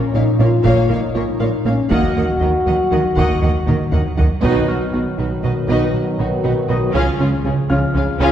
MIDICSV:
0, 0, Header, 1, 12, 480
1, 0, Start_track
1, 0, Tempo, 504202
1, 1815, Time_signature, 5, 2, 24, 8
1, 7919, End_track
2, 0, Start_track
2, 0, Title_t, "Grand piano"
2, 0, Program_c, 0, 0
2, 0, Control_c, 0, 64, 127
2, 0, Note_on_c, 0, 80, 57
2, 103, Note_off_c, 0, 80, 0
2, 1824, Note_on_c, 0, 89, 45
2, 1827, Note_on_c, 0, 77, 35
2, 1836, Control_c, 0, 64, 0
2, 1970, Control_c, 0, 64, 127
2, 3024, Note_on_c, 0, 85, 32
2, 3222, Note_off_c, 0, 89, 0
2, 3223, Note_off_c, 0, 77, 0
2, 4182, Note_off_c, 0, 85, 0
2, 4232, Control_c, 0, 64, 0
2, 4402, Control_c, 0, 64, 127
2, 4458, Note_on_c, 0, 89, 39
2, 5859, Note_off_c, 0, 89, 0
2, 6373, Note_on_c, 0, 87, 32
2, 6632, Control_c, 0, 64, 0
2, 6787, Control_c, 0, 64, 127
2, 7327, Note_on_c, 0, 89, 54
2, 7328, Note_on_c, 0, 77, 32
2, 7776, Note_off_c, 0, 87, 0
2, 7919, Note_off_c, 0, 77, 0
2, 7919, Note_off_c, 0, 89, 0
2, 7919, End_track
3, 0, Start_track
3, 0, Title_t, "Violin section"
3, 0, Program_c, 1, 48
3, 140, Note_on_c, 1, 77, 55
3, 216, Note_off_c, 1, 77, 0
3, 379, Note_on_c, 1, 77, 46
3, 455, Note_off_c, 1, 77, 0
3, 609, Note_on_c, 1, 77, 64
3, 835, Note_off_c, 1, 77, 0
3, 855, Note_on_c, 1, 77, 48
3, 931, Note_off_c, 1, 77, 0
3, 1092, Note_on_c, 1, 73, 58
3, 1168, Note_off_c, 1, 73, 0
3, 1330, Note_on_c, 1, 77, 50
3, 1406, Note_off_c, 1, 77, 0
3, 1580, Note_on_c, 1, 77, 48
3, 1656, Note_off_c, 1, 77, 0
3, 1813, Note_on_c, 1, 78, 51
3, 2037, Note_off_c, 1, 78, 0
3, 2059, Note_on_c, 1, 78, 39
3, 2135, Note_off_c, 1, 78, 0
3, 2292, Note_on_c, 1, 75, 33
3, 2368, Note_off_c, 1, 75, 0
3, 2542, Note_on_c, 1, 78, 41
3, 2618, Note_off_c, 1, 78, 0
3, 2779, Note_on_c, 1, 78, 38
3, 2855, Note_off_c, 1, 78, 0
3, 3013, Note_on_c, 1, 78, 49
3, 3237, Note_off_c, 1, 78, 0
3, 3257, Note_on_c, 1, 78, 38
3, 3334, Note_off_c, 1, 78, 0
3, 3496, Note_on_c, 1, 75, 43
3, 3572, Note_off_c, 1, 75, 0
3, 3733, Note_on_c, 1, 78, 38
3, 3809, Note_off_c, 1, 78, 0
3, 3977, Note_on_c, 1, 78, 37
3, 4053, Note_off_c, 1, 78, 0
3, 7919, End_track
4, 0, Start_track
4, 0, Title_t, "Violin section"
4, 0, Program_c, 2, 48
4, 145, Note_on_c, 2, 73, 49
4, 221, Note_off_c, 2, 73, 0
4, 383, Note_on_c, 2, 73, 49
4, 459, Note_off_c, 2, 73, 0
4, 620, Note_on_c, 2, 73, 61
4, 841, Note_off_c, 2, 73, 0
4, 867, Note_on_c, 2, 73, 47
4, 943, Note_off_c, 2, 73, 0
4, 1099, Note_on_c, 2, 70, 44
4, 1176, Note_off_c, 2, 70, 0
4, 1342, Note_on_c, 2, 73, 51
4, 1418, Note_off_c, 2, 73, 0
4, 1580, Note_on_c, 2, 73, 48
4, 1656, Note_off_c, 2, 73, 0
4, 1824, Note_on_c, 2, 75, 56
4, 2043, Note_off_c, 2, 75, 0
4, 2064, Note_on_c, 2, 75, 37
4, 2140, Note_off_c, 2, 75, 0
4, 2300, Note_on_c, 2, 70, 38
4, 2376, Note_off_c, 2, 70, 0
4, 2537, Note_on_c, 2, 75, 43
4, 2613, Note_off_c, 2, 75, 0
4, 2781, Note_on_c, 2, 75, 44
4, 2857, Note_off_c, 2, 75, 0
4, 3023, Note_on_c, 2, 75, 53
4, 3243, Note_off_c, 2, 75, 0
4, 3261, Note_on_c, 2, 75, 38
4, 3337, Note_off_c, 2, 75, 0
4, 3502, Note_on_c, 2, 70, 43
4, 3578, Note_off_c, 2, 70, 0
4, 3739, Note_on_c, 2, 75, 33
4, 3815, Note_off_c, 2, 75, 0
4, 3977, Note_on_c, 2, 75, 35
4, 4053, Note_off_c, 2, 75, 0
4, 4208, Note_on_c, 2, 75, 67
4, 4209, Note_on_c, 2, 71, 68
4, 4435, Note_off_c, 2, 71, 0
4, 4435, Note_off_c, 2, 75, 0
4, 4450, Note_on_c, 2, 71, 31
4, 4454, Note_on_c, 2, 66, 37
4, 4526, Note_off_c, 2, 71, 0
4, 4530, Note_off_c, 2, 66, 0
4, 4694, Note_on_c, 2, 63, 34
4, 4694, Note_on_c, 2, 66, 30
4, 4770, Note_off_c, 2, 63, 0
4, 4770, Note_off_c, 2, 66, 0
4, 4935, Note_on_c, 2, 66, 33
4, 4937, Note_on_c, 2, 71, 34
4, 5012, Note_off_c, 2, 66, 0
4, 5013, Note_off_c, 2, 71, 0
4, 5179, Note_on_c, 2, 75, 40
4, 5180, Note_on_c, 2, 71, 40
4, 5256, Note_off_c, 2, 75, 0
4, 5257, Note_off_c, 2, 71, 0
4, 5416, Note_on_c, 2, 75, 53
4, 5418, Note_on_c, 2, 71, 50
4, 5639, Note_off_c, 2, 75, 0
4, 5640, Note_off_c, 2, 71, 0
4, 5899, Note_on_c, 2, 63, 43
4, 5899, Note_on_c, 2, 66, 45
4, 5975, Note_off_c, 2, 63, 0
4, 5975, Note_off_c, 2, 66, 0
4, 6134, Note_on_c, 2, 66, 46
4, 6135, Note_on_c, 2, 71, 45
4, 6210, Note_off_c, 2, 66, 0
4, 6211, Note_off_c, 2, 71, 0
4, 6370, Note_on_c, 2, 75, 40
4, 6372, Note_on_c, 2, 71, 42
4, 6447, Note_off_c, 2, 75, 0
4, 6448, Note_off_c, 2, 71, 0
4, 6617, Note_on_c, 2, 77, 61
4, 6618, Note_on_c, 2, 68, 58
4, 6839, Note_off_c, 2, 77, 0
4, 6840, Note_off_c, 2, 68, 0
4, 6855, Note_on_c, 2, 65, 45
4, 6857, Note_on_c, 2, 73, 42
4, 6931, Note_off_c, 2, 65, 0
4, 6933, Note_off_c, 2, 73, 0
4, 7100, Note_on_c, 2, 61, 37
4, 7100, Note_on_c, 2, 68, 43
4, 7176, Note_off_c, 2, 61, 0
4, 7177, Note_off_c, 2, 68, 0
4, 7337, Note_on_c, 2, 65, 46
4, 7340, Note_on_c, 2, 73, 44
4, 7413, Note_off_c, 2, 65, 0
4, 7416, Note_off_c, 2, 73, 0
4, 7579, Note_on_c, 2, 77, 45
4, 7580, Note_on_c, 2, 68, 46
4, 7655, Note_off_c, 2, 77, 0
4, 7656, Note_off_c, 2, 68, 0
4, 7817, Note_on_c, 2, 68, 67
4, 7820, Note_on_c, 2, 77, 65
4, 7919, Note_off_c, 2, 68, 0
4, 7919, Note_off_c, 2, 77, 0
4, 7919, End_track
5, 0, Start_track
5, 0, Title_t, "French horn section"
5, 0, Program_c, 3, 60
5, 0, Note_on_c, 3, 61, 89
5, 127, Note_on_c, 3, 63, 82
5, 137, Note_off_c, 3, 61, 0
5, 367, Note_off_c, 3, 63, 0
5, 370, Note_on_c, 3, 65, 88
5, 853, Note_off_c, 3, 65, 0
5, 860, Note_on_c, 3, 63, 73
5, 1578, Note_off_c, 3, 63, 0
5, 1583, Note_on_c, 3, 61, 70
5, 1817, Note_on_c, 3, 66, 78
5, 1819, Note_off_c, 3, 61, 0
5, 3938, Note_off_c, 3, 66, 0
5, 4218, Note_on_c, 3, 59, 58
5, 4219, Note_on_c, 3, 71, 58
5, 6579, Note_off_c, 3, 59, 0
5, 6579, Note_off_c, 3, 71, 0
5, 6614, Note_on_c, 3, 61, 57
5, 6614, Note_on_c, 3, 68, 58
5, 7919, Note_off_c, 3, 61, 0
5, 7919, Note_off_c, 3, 68, 0
5, 7919, End_track
6, 0, Start_track
6, 0, Title_t, "Viola section"
6, 0, Program_c, 4, 48
6, 144, Note_on_c, 4, 58, 48
6, 220, Note_off_c, 4, 58, 0
6, 382, Note_on_c, 4, 58, 51
6, 458, Note_off_c, 4, 58, 0
6, 616, Note_on_c, 4, 58, 63
6, 839, Note_off_c, 4, 58, 0
6, 858, Note_on_c, 4, 58, 49
6, 934, Note_off_c, 4, 58, 0
6, 1102, Note_on_c, 4, 58, 44
6, 1179, Note_off_c, 4, 58, 0
6, 1337, Note_on_c, 4, 58, 44
6, 1414, Note_off_c, 4, 58, 0
6, 1574, Note_on_c, 4, 58, 49
6, 1650, Note_off_c, 4, 58, 0
6, 1809, Note_on_c, 4, 58, 55
6, 2035, Note_off_c, 4, 58, 0
6, 2053, Note_on_c, 4, 58, 42
6, 2129, Note_off_c, 4, 58, 0
6, 2295, Note_on_c, 4, 58, 37
6, 2371, Note_off_c, 4, 58, 0
6, 2534, Note_on_c, 4, 58, 40
6, 2610, Note_off_c, 4, 58, 0
6, 2767, Note_on_c, 4, 58, 39
6, 2843, Note_off_c, 4, 58, 0
6, 3021, Note_on_c, 4, 58, 46
6, 3239, Note_off_c, 4, 58, 0
6, 3251, Note_on_c, 4, 58, 49
6, 3327, Note_off_c, 4, 58, 0
6, 3499, Note_on_c, 4, 58, 39
6, 3575, Note_off_c, 4, 58, 0
6, 3743, Note_on_c, 4, 58, 40
6, 3819, Note_off_c, 4, 58, 0
6, 3978, Note_on_c, 4, 58, 37
6, 4054, Note_off_c, 4, 58, 0
6, 4210, Note_on_c, 4, 66, 71
6, 4216, Note_on_c, 4, 63, 68
6, 4436, Note_off_c, 4, 66, 0
6, 4439, Note_off_c, 4, 63, 0
6, 4459, Note_on_c, 4, 63, 35
6, 4459, Note_on_c, 4, 66, 38
6, 4535, Note_off_c, 4, 63, 0
6, 4536, Note_off_c, 4, 66, 0
6, 4697, Note_on_c, 4, 63, 33
6, 4697, Note_on_c, 4, 66, 32
6, 4773, Note_off_c, 4, 63, 0
6, 4774, Note_off_c, 4, 66, 0
6, 4939, Note_on_c, 4, 63, 37
6, 4940, Note_on_c, 4, 66, 38
6, 5016, Note_off_c, 4, 63, 0
6, 5016, Note_off_c, 4, 66, 0
6, 5177, Note_on_c, 4, 66, 36
6, 5179, Note_on_c, 4, 63, 37
6, 5253, Note_off_c, 4, 66, 0
6, 5255, Note_off_c, 4, 63, 0
6, 5421, Note_on_c, 4, 63, 44
6, 5421, Note_on_c, 4, 66, 47
6, 5642, Note_off_c, 4, 63, 0
6, 5642, Note_off_c, 4, 66, 0
6, 5891, Note_on_c, 4, 66, 40
6, 5892, Note_on_c, 4, 63, 41
6, 5967, Note_off_c, 4, 66, 0
6, 5968, Note_off_c, 4, 63, 0
6, 6132, Note_on_c, 4, 63, 40
6, 6132, Note_on_c, 4, 66, 39
6, 6208, Note_off_c, 4, 63, 0
6, 6208, Note_off_c, 4, 66, 0
6, 6363, Note_on_c, 4, 63, 42
6, 6366, Note_on_c, 4, 66, 48
6, 6440, Note_off_c, 4, 63, 0
6, 6442, Note_off_c, 4, 66, 0
6, 6601, Note_on_c, 4, 65, 56
6, 6602, Note_on_c, 4, 61, 63
6, 6827, Note_off_c, 4, 61, 0
6, 6831, Note_off_c, 4, 65, 0
6, 6838, Note_on_c, 4, 61, 42
6, 6841, Note_on_c, 4, 65, 38
6, 6914, Note_off_c, 4, 61, 0
6, 6917, Note_off_c, 4, 65, 0
6, 7082, Note_on_c, 4, 61, 39
6, 7083, Note_on_c, 4, 65, 37
6, 7159, Note_off_c, 4, 61, 0
6, 7159, Note_off_c, 4, 65, 0
6, 7321, Note_on_c, 4, 61, 41
6, 7321, Note_on_c, 4, 65, 43
6, 7397, Note_off_c, 4, 61, 0
6, 7398, Note_off_c, 4, 65, 0
6, 7560, Note_on_c, 4, 61, 44
6, 7562, Note_on_c, 4, 65, 46
6, 7636, Note_off_c, 4, 61, 0
6, 7638, Note_off_c, 4, 65, 0
6, 7805, Note_on_c, 4, 65, 73
6, 7806, Note_on_c, 4, 61, 70
6, 7919, Note_off_c, 4, 61, 0
6, 7919, Note_off_c, 4, 65, 0
6, 7919, End_track
7, 0, Start_track
7, 0, Title_t, "Synth arpeggio sound"
7, 0, Program_c, 5, 84
7, 132, Note_on_c, 5, 61, 57
7, 277, Note_off_c, 5, 61, 0
7, 373, Note_on_c, 5, 61, 58
7, 518, Note_off_c, 5, 61, 0
7, 610, Note_on_c, 5, 58, 83
7, 756, Note_off_c, 5, 58, 0
7, 851, Note_on_c, 5, 70, 52
7, 996, Note_off_c, 5, 70, 0
7, 1095, Note_on_c, 5, 65, 55
7, 1239, Note_off_c, 5, 65, 0
7, 1335, Note_on_c, 5, 70, 57
7, 1479, Note_off_c, 5, 70, 0
7, 1577, Note_on_c, 5, 61, 55
7, 1721, Note_off_c, 5, 61, 0
7, 1819, Note_on_c, 5, 51, 78
7, 1962, Note_off_c, 5, 51, 0
7, 2056, Note_on_c, 5, 54, 56
7, 2200, Note_off_c, 5, 54, 0
7, 2293, Note_on_c, 5, 63, 54
7, 2438, Note_off_c, 5, 63, 0
7, 2533, Note_on_c, 5, 54, 57
7, 2678, Note_off_c, 5, 54, 0
7, 2771, Note_on_c, 5, 54, 49
7, 2916, Note_off_c, 5, 54, 0
7, 3010, Note_on_c, 5, 51, 76
7, 3156, Note_off_c, 5, 51, 0
7, 3251, Note_on_c, 5, 63, 53
7, 3396, Note_off_c, 5, 63, 0
7, 3490, Note_on_c, 5, 58, 52
7, 3635, Note_off_c, 5, 58, 0
7, 3731, Note_on_c, 5, 63, 54
7, 3876, Note_off_c, 5, 63, 0
7, 3969, Note_on_c, 5, 54, 50
7, 4115, Note_off_c, 5, 54, 0
7, 4210, Note_on_c, 5, 59, 65
7, 4356, Note_off_c, 5, 59, 0
7, 4450, Note_on_c, 5, 66, 50
7, 4596, Note_off_c, 5, 66, 0
7, 4694, Note_on_c, 5, 66, 53
7, 4838, Note_off_c, 5, 66, 0
7, 4932, Note_on_c, 5, 63, 51
7, 5077, Note_off_c, 5, 63, 0
7, 5170, Note_on_c, 5, 63, 42
7, 5315, Note_off_c, 5, 63, 0
7, 5413, Note_on_c, 5, 59, 73
7, 5558, Note_off_c, 5, 59, 0
7, 5892, Note_on_c, 5, 71, 47
7, 6037, Note_off_c, 5, 71, 0
7, 6132, Note_on_c, 5, 63, 56
7, 6277, Note_off_c, 5, 63, 0
7, 6372, Note_on_c, 5, 71, 54
7, 6517, Note_off_c, 5, 71, 0
7, 6610, Note_on_c, 5, 49, 71
7, 6756, Note_off_c, 5, 49, 0
7, 6846, Note_on_c, 5, 56, 54
7, 6993, Note_off_c, 5, 56, 0
7, 7087, Note_on_c, 5, 56, 58
7, 7234, Note_off_c, 5, 56, 0
7, 7331, Note_on_c, 5, 53, 52
7, 7476, Note_off_c, 5, 53, 0
7, 7567, Note_on_c, 5, 53, 50
7, 7713, Note_off_c, 5, 53, 0
7, 7805, Note_on_c, 5, 49, 79
7, 7919, Note_off_c, 5, 49, 0
7, 7919, End_track
8, 0, Start_track
8, 0, Title_t, "Trombone section"
8, 0, Program_c, 6, 61
8, 4216, Note_on_c, 6, 54, 68
8, 4218, Note_on_c, 6, 51, 66
8, 6578, Note_off_c, 6, 54, 0
8, 6579, Note_off_c, 6, 51, 0
8, 6609, Note_on_c, 6, 53, 64
8, 6611, Note_on_c, 6, 49, 66
8, 7919, Note_off_c, 6, 49, 0
8, 7919, Note_off_c, 6, 53, 0
8, 7919, End_track
9, 0, Start_track
9, 0, Title_t, "Cello section"
9, 0, Program_c, 7, 48
9, 142, Note_on_c, 7, 46, 52
9, 218, Note_off_c, 7, 46, 0
9, 378, Note_on_c, 7, 46, 56
9, 454, Note_off_c, 7, 46, 0
9, 621, Note_on_c, 7, 46, 63
9, 697, Note_off_c, 7, 46, 0
9, 858, Note_on_c, 7, 46, 47
9, 934, Note_off_c, 7, 46, 0
9, 1097, Note_on_c, 7, 46, 46
9, 1174, Note_off_c, 7, 46, 0
9, 1340, Note_on_c, 7, 46, 46
9, 1416, Note_off_c, 7, 46, 0
9, 1582, Note_on_c, 7, 46, 45
9, 1658, Note_off_c, 7, 46, 0
9, 1824, Note_on_c, 7, 51, 59
9, 1900, Note_off_c, 7, 51, 0
9, 2068, Note_on_c, 7, 51, 42
9, 2144, Note_off_c, 7, 51, 0
9, 2306, Note_on_c, 7, 51, 42
9, 2382, Note_off_c, 7, 51, 0
9, 2543, Note_on_c, 7, 51, 35
9, 2619, Note_off_c, 7, 51, 0
9, 2782, Note_on_c, 7, 51, 44
9, 2858, Note_off_c, 7, 51, 0
9, 3022, Note_on_c, 7, 51, 52
9, 3098, Note_off_c, 7, 51, 0
9, 3257, Note_on_c, 7, 51, 37
9, 3333, Note_off_c, 7, 51, 0
9, 3500, Note_on_c, 7, 51, 41
9, 3576, Note_off_c, 7, 51, 0
9, 3738, Note_on_c, 7, 51, 35
9, 3814, Note_off_c, 7, 51, 0
9, 3978, Note_on_c, 7, 51, 36
9, 4054, Note_off_c, 7, 51, 0
9, 4216, Note_on_c, 7, 47, 66
9, 4439, Note_off_c, 7, 47, 0
9, 4457, Note_on_c, 7, 47, 35
9, 4533, Note_off_c, 7, 47, 0
9, 4694, Note_on_c, 7, 47, 37
9, 4771, Note_off_c, 7, 47, 0
9, 4935, Note_on_c, 7, 47, 34
9, 5011, Note_off_c, 7, 47, 0
9, 5173, Note_on_c, 7, 47, 42
9, 5249, Note_off_c, 7, 47, 0
9, 5410, Note_on_c, 7, 47, 52
9, 5486, Note_off_c, 7, 47, 0
9, 5896, Note_on_c, 7, 47, 34
9, 5972, Note_off_c, 7, 47, 0
9, 6135, Note_on_c, 7, 47, 38
9, 6212, Note_off_c, 7, 47, 0
9, 6375, Note_on_c, 7, 47, 44
9, 6451, Note_off_c, 7, 47, 0
9, 6614, Note_on_c, 7, 49, 53
9, 6690, Note_off_c, 7, 49, 0
9, 6853, Note_on_c, 7, 49, 42
9, 6929, Note_off_c, 7, 49, 0
9, 7096, Note_on_c, 7, 49, 41
9, 7172, Note_off_c, 7, 49, 0
9, 7332, Note_on_c, 7, 49, 46
9, 7408, Note_off_c, 7, 49, 0
9, 7572, Note_on_c, 7, 49, 50
9, 7649, Note_off_c, 7, 49, 0
9, 7813, Note_on_c, 7, 49, 56
9, 7889, Note_off_c, 7, 49, 0
9, 7919, End_track
10, 0, Start_track
10, 0, Title_t, "Analog synth bass"
10, 0, Program_c, 8, 38
10, 137, Note_on_c, 8, 46, 48
10, 281, Note_off_c, 8, 46, 0
10, 378, Note_on_c, 8, 46, 64
10, 521, Note_off_c, 8, 46, 0
10, 618, Note_on_c, 8, 46, 83
10, 761, Note_off_c, 8, 46, 0
10, 856, Note_on_c, 8, 46, 55
10, 1000, Note_off_c, 8, 46, 0
10, 1101, Note_on_c, 8, 58, 46
10, 1243, Note_off_c, 8, 58, 0
10, 1336, Note_on_c, 8, 46, 55
10, 1480, Note_off_c, 8, 46, 0
10, 1573, Note_on_c, 8, 46, 53
10, 1718, Note_off_c, 8, 46, 0
10, 1810, Note_on_c, 8, 39, 78
10, 1956, Note_off_c, 8, 39, 0
10, 2055, Note_on_c, 8, 39, 53
10, 2199, Note_off_c, 8, 39, 0
10, 2297, Note_on_c, 8, 39, 53
10, 2440, Note_off_c, 8, 39, 0
10, 2539, Note_on_c, 8, 39, 51
10, 2682, Note_off_c, 8, 39, 0
10, 2779, Note_on_c, 8, 39, 57
10, 2922, Note_off_c, 8, 39, 0
10, 3020, Note_on_c, 8, 39, 82
10, 3163, Note_off_c, 8, 39, 0
10, 3258, Note_on_c, 8, 39, 51
10, 3401, Note_off_c, 8, 39, 0
10, 3500, Note_on_c, 8, 51, 50
10, 3643, Note_off_c, 8, 51, 0
10, 3743, Note_on_c, 8, 39, 54
10, 3885, Note_off_c, 8, 39, 0
10, 3982, Note_on_c, 8, 39, 52
10, 4124, Note_off_c, 8, 39, 0
10, 4214, Note_on_c, 8, 47, 98
10, 4359, Note_off_c, 8, 47, 0
10, 4459, Note_on_c, 8, 59, 47
10, 4602, Note_off_c, 8, 59, 0
10, 4696, Note_on_c, 8, 59, 46
10, 4840, Note_off_c, 8, 59, 0
10, 4939, Note_on_c, 8, 47, 46
10, 5082, Note_off_c, 8, 47, 0
10, 5178, Note_on_c, 8, 47, 53
10, 5321, Note_off_c, 8, 47, 0
10, 5418, Note_on_c, 8, 47, 73
10, 5561, Note_off_c, 8, 47, 0
10, 5654, Note_on_c, 8, 47, 44
10, 5799, Note_off_c, 8, 47, 0
10, 5894, Note_on_c, 8, 47, 46
10, 6038, Note_off_c, 8, 47, 0
10, 6136, Note_on_c, 8, 47, 53
10, 6280, Note_off_c, 8, 47, 0
10, 6376, Note_on_c, 8, 47, 54
10, 6520, Note_off_c, 8, 47, 0
10, 6612, Note_on_c, 8, 37, 77
10, 6757, Note_off_c, 8, 37, 0
10, 6855, Note_on_c, 8, 49, 49
10, 6999, Note_off_c, 8, 49, 0
10, 7093, Note_on_c, 8, 49, 52
10, 7238, Note_off_c, 8, 49, 0
10, 7332, Note_on_c, 8, 37, 48
10, 7477, Note_off_c, 8, 37, 0
10, 7565, Note_on_c, 8, 37, 56
10, 7712, Note_off_c, 8, 37, 0
10, 7806, Note_on_c, 8, 37, 78
10, 7919, Note_off_c, 8, 37, 0
10, 7919, End_track
11, 0, Start_track
11, 0, Title_t, "Double bass section"
11, 0, Program_c, 10, 48
11, 136, Note_on_c, 10, 34, 48
11, 212, Note_off_c, 10, 34, 0
11, 378, Note_on_c, 10, 34, 48
11, 454, Note_off_c, 10, 34, 0
11, 613, Note_on_c, 10, 34, 66
11, 689, Note_off_c, 10, 34, 0
11, 857, Note_on_c, 10, 34, 51
11, 933, Note_off_c, 10, 34, 0
11, 1099, Note_on_c, 10, 34, 47
11, 1176, Note_off_c, 10, 34, 0
11, 1339, Note_on_c, 10, 34, 42
11, 1415, Note_off_c, 10, 34, 0
11, 1572, Note_on_c, 10, 34, 40
11, 1649, Note_off_c, 10, 34, 0
11, 1814, Note_on_c, 10, 39, 55
11, 1890, Note_off_c, 10, 39, 0
11, 2054, Note_on_c, 10, 39, 41
11, 2130, Note_off_c, 10, 39, 0
11, 2296, Note_on_c, 10, 39, 43
11, 2372, Note_off_c, 10, 39, 0
11, 2536, Note_on_c, 10, 39, 39
11, 2612, Note_off_c, 10, 39, 0
11, 2772, Note_on_c, 10, 39, 40
11, 2849, Note_off_c, 10, 39, 0
11, 3016, Note_on_c, 10, 39, 52
11, 3093, Note_off_c, 10, 39, 0
11, 3256, Note_on_c, 10, 39, 38
11, 3332, Note_off_c, 10, 39, 0
11, 3497, Note_on_c, 10, 39, 40
11, 3573, Note_off_c, 10, 39, 0
11, 3736, Note_on_c, 10, 39, 39
11, 3812, Note_off_c, 10, 39, 0
11, 3976, Note_on_c, 10, 39, 35
11, 4052, Note_off_c, 10, 39, 0
11, 4214, Note_on_c, 10, 35, 73
11, 4438, Note_off_c, 10, 35, 0
11, 4458, Note_on_c, 10, 35, 36
11, 4534, Note_off_c, 10, 35, 0
11, 4696, Note_on_c, 10, 35, 36
11, 4772, Note_off_c, 10, 35, 0
11, 4939, Note_on_c, 10, 35, 32
11, 5015, Note_off_c, 10, 35, 0
11, 5176, Note_on_c, 10, 35, 40
11, 5252, Note_off_c, 10, 35, 0
11, 5413, Note_on_c, 10, 35, 45
11, 5489, Note_off_c, 10, 35, 0
11, 5896, Note_on_c, 10, 35, 42
11, 5972, Note_off_c, 10, 35, 0
11, 6140, Note_on_c, 10, 35, 40
11, 6216, Note_off_c, 10, 35, 0
11, 6379, Note_on_c, 10, 35, 32
11, 6455, Note_off_c, 10, 35, 0
11, 6616, Note_on_c, 10, 37, 55
11, 6692, Note_off_c, 10, 37, 0
11, 6853, Note_on_c, 10, 37, 45
11, 6929, Note_off_c, 10, 37, 0
11, 7097, Note_on_c, 10, 37, 45
11, 7173, Note_off_c, 10, 37, 0
11, 7336, Note_on_c, 10, 37, 42
11, 7412, Note_off_c, 10, 37, 0
11, 7581, Note_on_c, 10, 37, 44
11, 7657, Note_off_c, 10, 37, 0
11, 7813, Note_on_c, 10, 37, 60
11, 7889, Note_off_c, 10, 37, 0
11, 7919, End_track
12, 0, Start_track
12, 0, Title_t, "Taiko and cinematic ensemble drums"
12, 621, Note_on_c, 9, 41, 69
12, 716, Note_off_c, 9, 41, 0
12, 1819, Note_on_c, 9, 41, 87
12, 1914, Note_off_c, 9, 41, 0
12, 3019, Note_on_c, 9, 41, 61
12, 3115, Note_off_c, 9, 41, 0
12, 3497, Note_on_c, 9, 47, 78
12, 3592, Note_off_c, 9, 47, 0
12, 3736, Note_on_c, 9, 45, 78
12, 3831, Note_off_c, 9, 45, 0
12, 3978, Note_on_c, 9, 43, 82
12, 4073, Note_off_c, 9, 43, 0
12, 4218, Note_on_c, 9, 41, 42
12, 4313, Note_off_c, 9, 41, 0
12, 7919, End_track
0, 0, End_of_file